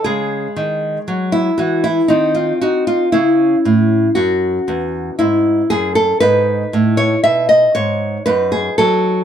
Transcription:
0, 0, Header, 1, 2, 480
1, 0, Start_track
1, 0, Tempo, 1027397
1, 26, Time_signature, 3, 2, 24, 8
1, 4317, End_track
2, 0, Start_track
2, 0, Title_t, "Nylon-string guitar"
2, 0, Program_c, 0, 24
2, 20, Note_on_c, 0, 68, 90
2, 26, Note_on_c, 0, 49, 68
2, 27, Note_on_c, 0, 56, 49
2, 219, Note_off_c, 0, 49, 0
2, 263, Note_on_c, 0, 51, 61
2, 456, Note_off_c, 0, 51, 0
2, 503, Note_on_c, 0, 54, 61
2, 603, Note_off_c, 0, 68, 0
2, 618, Note_on_c, 0, 64, 80
2, 695, Note_off_c, 0, 54, 0
2, 736, Note_on_c, 0, 66, 85
2, 741, Note_off_c, 0, 64, 0
2, 742, Note_on_c, 0, 52, 64
2, 858, Note_on_c, 0, 64, 81
2, 861, Note_off_c, 0, 66, 0
2, 936, Note_off_c, 0, 52, 0
2, 967, Note_off_c, 0, 56, 0
2, 973, Note_on_c, 0, 63, 82
2, 980, Note_on_c, 0, 51, 66
2, 981, Note_on_c, 0, 60, 49
2, 982, Note_off_c, 0, 64, 0
2, 1096, Note_on_c, 0, 65, 81
2, 1100, Note_off_c, 0, 63, 0
2, 1175, Note_off_c, 0, 51, 0
2, 1220, Note_off_c, 0, 65, 0
2, 1221, Note_on_c, 0, 66, 83
2, 1225, Note_on_c, 0, 63, 64
2, 1339, Note_off_c, 0, 66, 0
2, 1341, Note_on_c, 0, 65, 89
2, 1417, Note_off_c, 0, 63, 0
2, 1444, Note_off_c, 0, 60, 0
2, 1457, Note_off_c, 0, 65, 0
2, 1459, Note_on_c, 0, 64, 93
2, 1464, Note_on_c, 0, 49, 74
2, 1467, Note_on_c, 0, 61, 49
2, 1657, Note_off_c, 0, 49, 0
2, 1707, Note_on_c, 0, 45, 68
2, 1900, Note_off_c, 0, 45, 0
2, 1926, Note_off_c, 0, 64, 0
2, 1939, Note_on_c, 0, 66, 92
2, 1945, Note_on_c, 0, 42, 63
2, 2139, Note_off_c, 0, 42, 0
2, 2185, Note_on_c, 0, 40, 66
2, 2379, Note_off_c, 0, 40, 0
2, 2407, Note_off_c, 0, 66, 0
2, 2423, Note_on_c, 0, 64, 88
2, 2428, Note_on_c, 0, 44, 65
2, 2619, Note_off_c, 0, 44, 0
2, 2655, Note_off_c, 0, 64, 0
2, 2663, Note_on_c, 0, 68, 85
2, 2668, Note_on_c, 0, 42, 66
2, 2779, Note_off_c, 0, 68, 0
2, 2781, Note_on_c, 0, 69, 90
2, 2858, Note_off_c, 0, 42, 0
2, 2887, Note_off_c, 0, 61, 0
2, 2897, Note_off_c, 0, 69, 0
2, 2899, Note_on_c, 0, 71, 104
2, 2903, Note_on_c, 0, 44, 75
2, 2904, Note_on_c, 0, 63, 49
2, 3095, Note_off_c, 0, 44, 0
2, 3146, Note_on_c, 0, 45, 68
2, 3246, Note_off_c, 0, 71, 0
2, 3258, Note_on_c, 0, 73, 97
2, 3337, Note_off_c, 0, 45, 0
2, 3379, Note_off_c, 0, 73, 0
2, 3380, Note_on_c, 0, 76, 99
2, 3386, Note_on_c, 0, 47, 70
2, 3496, Note_off_c, 0, 76, 0
2, 3498, Note_on_c, 0, 75, 94
2, 3576, Note_off_c, 0, 47, 0
2, 3619, Note_on_c, 0, 73, 94
2, 3620, Note_off_c, 0, 75, 0
2, 3622, Note_on_c, 0, 44, 69
2, 3814, Note_off_c, 0, 44, 0
2, 3843, Note_off_c, 0, 63, 0
2, 3851, Note_off_c, 0, 73, 0
2, 3857, Note_on_c, 0, 71, 103
2, 3862, Note_on_c, 0, 42, 75
2, 3862, Note_on_c, 0, 63, 52
2, 3979, Note_on_c, 0, 68, 87
2, 3980, Note_off_c, 0, 71, 0
2, 4055, Note_off_c, 0, 42, 0
2, 4100, Note_off_c, 0, 68, 0
2, 4102, Note_on_c, 0, 69, 98
2, 4106, Note_on_c, 0, 54, 73
2, 4299, Note_off_c, 0, 54, 0
2, 4317, Note_off_c, 0, 63, 0
2, 4317, Note_off_c, 0, 69, 0
2, 4317, End_track
0, 0, End_of_file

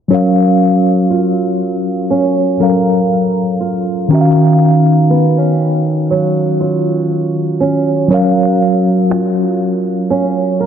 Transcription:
0, 0, Header, 1, 4, 480
1, 0, Start_track
1, 0, Tempo, 1000000
1, 49, Time_signature, 4, 2, 24, 8
1, 5119, End_track
2, 0, Start_track
2, 0, Title_t, "Tine electric piano"
2, 0, Program_c, 0, 4
2, 39, Note_on_c, 0, 54, 71
2, 49, Note_on_c, 0, 61, 66
2, 59, Note_on_c, 0, 70, 65
2, 68, Note_on_c, 0, 77, 77
2, 131, Control_c, 0, 64, 127
2, 1225, Note_off_c, 0, 54, 0
2, 1230, Note_off_c, 0, 61, 0
2, 1235, Note_off_c, 0, 70, 0
2, 1240, Note_off_c, 0, 77, 0
2, 1247, Note_on_c, 0, 54, 49
2, 1252, Note_on_c, 0, 61, 45
2, 1257, Note_on_c, 0, 69, 36
2, 1262, Note_on_c, 0, 77, 52
2, 1287, Note_off_c, 0, 69, 0
2, 1288, Note_on_c, 0, 70, 47
2, 1960, Note_on_c, 0, 51, 71
2, 1964, Note_off_c, 0, 61, 0
2, 1968, Note_off_c, 0, 54, 0
2, 1970, Note_on_c, 0, 61, 68
2, 1975, Note_off_c, 0, 77, 0
2, 1976, Control_c, 0, 64, 0
2, 1980, Note_on_c, 0, 66, 61
2, 1989, Note_off_c, 0, 70, 0
2, 1990, Note_on_c, 0, 76, 62
2, 2013, Note_off_c, 0, 76, 0
2, 2021, Note_on_c, 0, 77, 78
2, 2061, Control_c, 0, 64, 127
2, 3865, Note_off_c, 0, 51, 0
2, 3870, Note_off_c, 0, 61, 0
2, 3875, Note_off_c, 0, 66, 0
2, 3879, Note_on_c, 0, 54, 73
2, 3888, Note_on_c, 0, 61, 69
2, 3895, Control_c, 0, 64, 0
2, 3896, Note_off_c, 0, 77, 0
2, 3898, Note_on_c, 0, 70, 66
2, 3908, Note_on_c, 0, 77, 79
2, 3985, Control_c, 0, 64, 127
2, 5119, Note_off_c, 0, 54, 0
2, 5119, Note_off_c, 0, 61, 0
2, 5119, Note_off_c, 0, 70, 0
2, 5119, Note_off_c, 0, 77, 0
2, 5119, End_track
3, 0, Start_track
3, 0, Title_t, "Nylon-string guitar"
3, 0, Program_c, 1, 24
3, 49, Note_on_c, 1, 54, 71
3, 529, Note_on_c, 1, 65, 58
3, 1010, Note_on_c, 1, 61, 65
3, 1250, Note_on_c, 1, 70, 59
3, 1728, Note_off_c, 1, 65, 0
3, 1730, Note_on_c, 1, 65, 55
3, 1969, Note_off_c, 1, 54, 0
3, 1969, Note_on_c, 1, 51, 73
3, 2447, Note_off_c, 1, 61, 0
3, 2449, Note_on_c, 1, 59, 55
3, 2464, Note_off_c, 1, 65, 0
3, 2464, Note_off_c, 1, 70, 0
3, 2579, Note_off_c, 1, 59, 0
3, 2579, Note_on_c, 1, 61, 52
3, 2930, Note_on_c, 1, 54, 66
3, 3170, Note_on_c, 1, 65, 61
3, 3644, Note_off_c, 1, 61, 0
3, 3649, Note_on_c, 1, 61, 55
3, 3887, Note_off_c, 1, 54, 0
3, 3889, Note_off_c, 1, 51, 0
3, 3889, Note_on_c, 1, 54, 76
3, 4367, Note_off_c, 1, 65, 0
3, 4369, Note_on_c, 1, 65, 56
3, 4847, Note_off_c, 1, 61, 0
3, 4849, Note_on_c, 1, 61, 68
3, 5089, Note_on_c, 1, 70, 64
3, 5119, Note_off_c, 1, 54, 0
3, 5119, Note_off_c, 1, 61, 0
3, 5119, Note_off_c, 1, 65, 0
3, 5119, Note_off_c, 1, 70, 0
3, 5119, End_track
4, 0, Start_track
4, 0, Title_t, "Drums"
4, 4375, Note_on_c, 9, 26, 111
4, 4423, Note_off_c, 9, 26, 0
4, 5119, End_track
0, 0, End_of_file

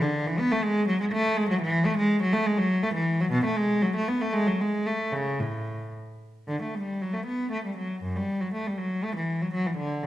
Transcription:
0, 0, Header, 1, 2, 480
1, 0, Start_track
1, 0, Tempo, 490196
1, 390, Time_signature, 3, 2, 24, 8
1, 3749, Tempo, 515464
1, 4709, Tempo, 538600
1, 6629, Tempo, 501253
1, 9553, End_track
2, 0, Start_track
2, 0, Title_t, "Cello"
2, 0, Program_c, 0, 42
2, 15, Note_on_c, 0, 50, 84
2, 263, Note_off_c, 0, 50, 0
2, 263, Note_on_c, 0, 52, 87
2, 384, Note_on_c, 0, 59, 100
2, 387, Note_off_c, 0, 52, 0
2, 507, Note_on_c, 0, 57, 87
2, 508, Note_off_c, 0, 59, 0
2, 620, Note_on_c, 0, 56, 99
2, 629, Note_off_c, 0, 57, 0
2, 859, Note_on_c, 0, 54, 81
2, 865, Note_off_c, 0, 56, 0
2, 981, Note_off_c, 0, 54, 0
2, 981, Note_on_c, 0, 56, 89
2, 1030, Note_off_c, 0, 56, 0
2, 1098, Note_on_c, 0, 57, 94
2, 1336, Note_off_c, 0, 57, 0
2, 1343, Note_on_c, 0, 56, 106
2, 1463, Note_off_c, 0, 56, 0
2, 1463, Note_on_c, 0, 54, 78
2, 1580, Note_off_c, 0, 54, 0
2, 1585, Note_on_c, 0, 52, 93
2, 1815, Note_off_c, 0, 52, 0
2, 1817, Note_on_c, 0, 57, 98
2, 1935, Note_off_c, 0, 57, 0
2, 1939, Note_on_c, 0, 56, 90
2, 2169, Note_off_c, 0, 56, 0
2, 2173, Note_on_c, 0, 54, 87
2, 2285, Note_on_c, 0, 57, 94
2, 2289, Note_off_c, 0, 54, 0
2, 2407, Note_off_c, 0, 57, 0
2, 2409, Note_on_c, 0, 56, 83
2, 2528, Note_on_c, 0, 54, 93
2, 2530, Note_off_c, 0, 56, 0
2, 2771, Note_on_c, 0, 57, 101
2, 2772, Note_off_c, 0, 54, 0
2, 2884, Note_on_c, 0, 52, 87
2, 2894, Note_off_c, 0, 57, 0
2, 3128, Note_off_c, 0, 52, 0
2, 3138, Note_on_c, 0, 54, 85
2, 3243, Note_on_c, 0, 47, 102
2, 3259, Note_off_c, 0, 54, 0
2, 3370, Note_off_c, 0, 47, 0
2, 3375, Note_on_c, 0, 57, 83
2, 3491, Note_on_c, 0, 56, 92
2, 3497, Note_off_c, 0, 57, 0
2, 3742, Note_on_c, 0, 54, 80
2, 3743, Note_off_c, 0, 56, 0
2, 3864, Note_off_c, 0, 54, 0
2, 3866, Note_on_c, 0, 57, 83
2, 3983, Note_off_c, 0, 57, 0
2, 3986, Note_on_c, 0, 59, 82
2, 4104, Note_off_c, 0, 59, 0
2, 4110, Note_on_c, 0, 57, 84
2, 4217, Note_on_c, 0, 56, 99
2, 4227, Note_off_c, 0, 57, 0
2, 4340, Note_off_c, 0, 56, 0
2, 4347, Note_on_c, 0, 54, 82
2, 4465, Note_off_c, 0, 54, 0
2, 4471, Note_on_c, 0, 56, 80
2, 4712, Note_off_c, 0, 56, 0
2, 4714, Note_on_c, 0, 57, 77
2, 4943, Note_on_c, 0, 49, 77
2, 4950, Note_off_c, 0, 57, 0
2, 5185, Note_off_c, 0, 49, 0
2, 5187, Note_on_c, 0, 45, 65
2, 5665, Note_off_c, 0, 45, 0
2, 6152, Note_on_c, 0, 50, 69
2, 6276, Note_off_c, 0, 50, 0
2, 6279, Note_on_c, 0, 57, 54
2, 6394, Note_on_c, 0, 55, 59
2, 6396, Note_off_c, 0, 57, 0
2, 6626, Note_off_c, 0, 55, 0
2, 6629, Note_on_c, 0, 54, 61
2, 6748, Note_on_c, 0, 57, 57
2, 6750, Note_off_c, 0, 54, 0
2, 6870, Note_off_c, 0, 57, 0
2, 6870, Note_on_c, 0, 59, 66
2, 7106, Note_on_c, 0, 57, 72
2, 7108, Note_off_c, 0, 59, 0
2, 7228, Note_off_c, 0, 57, 0
2, 7235, Note_on_c, 0, 55, 53
2, 7353, Note_off_c, 0, 55, 0
2, 7354, Note_on_c, 0, 54, 62
2, 7591, Note_off_c, 0, 54, 0
2, 7593, Note_on_c, 0, 42, 71
2, 7712, Note_off_c, 0, 42, 0
2, 7725, Note_on_c, 0, 55, 68
2, 7961, Note_off_c, 0, 55, 0
2, 7962, Note_on_c, 0, 54, 63
2, 8079, Note_off_c, 0, 54, 0
2, 8084, Note_on_c, 0, 57, 66
2, 8198, Note_off_c, 0, 57, 0
2, 8214, Note_on_c, 0, 55, 55
2, 8322, Note_on_c, 0, 54, 69
2, 8326, Note_off_c, 0, 55, 0
2, 8562, Note_off_c, 0, 54, 0
2, 8570, Note_on_c, 0, 57, 83
2, 8685, Note_off_c, 0, 57, 0
2, 8689, Note_on_c, 0, 52, 64
2, 8918, Note_off_c, 0, 52, 0
2, 8930, Note_on_c, 0, 54, 61
2, 9028, Note_off_c, 0, 54, 0
2, 9039, Note_on_c, 0, 54, 78
2, 9153, Note_off_c, 0, 54, 0
2, 9165, Note_on_c, 0, 52, 58
2, 9275, Note_on_c, 0, 50, 70
2, 9278, Note_off_c, 0, 52, 0
2, 9505, Note_off_c, 0, 50, 0
2, 9516, Note_on_c, 0, 49, 64
2, 9553, Note_off_c, 0, 49, 0
2, 9553, End_track
0, 0, End_of_file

